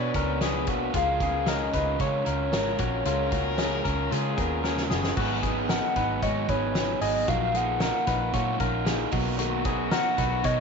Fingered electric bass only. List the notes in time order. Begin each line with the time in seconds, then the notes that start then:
Already playing: B2
0.14 C#2
0.68 B1
0.94 C#2
1.73 C#2
1.99 C#3
2.26 C#2
2.52 G#1
2.79 A#1
3.05 C#2
3.85 C#2
4.12 C#3
4.38 D#2
4.90 F#1
5.17 G#1
5.96 G#1
6.23 G#2
6.48 G#1
7.01 G#1
7.28 A#1
8.08 A#1
8.34 A#2
8.60 A#1
9.12 B1
10.18 B1
10.44 B2